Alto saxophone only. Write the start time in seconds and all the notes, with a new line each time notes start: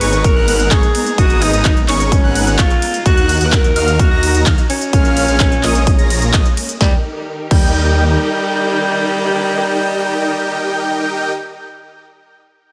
Already playing: B4
0.24 A#4
0.71 G#4
1.18 F#4
1.42 D#4
1.82 D#4
1.89 C#4
2.59 F4
3.06 F#4
3.46 B4
3.53 A#4
4.00 F#4
4.70 C#4
6.81 G3
7.51 G3